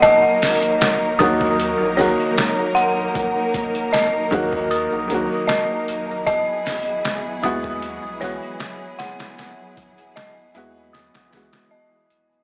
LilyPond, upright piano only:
\new Staff \with { instrumentName = "Upright piano" } { \time 4/4 \key ees \phrygian \tempo 4 = 77 r4. <ees ges bes ges'>4 <ees ges bes ges'>8 r4 | r4. <ees ges bes ges'>4 <ees ges bes ges'>4. | r4. <gis b e' fis'>4 <e gis b fis'>8 r4 | r4. <gis b e' fis'>4 <e gis b fis'>4. | }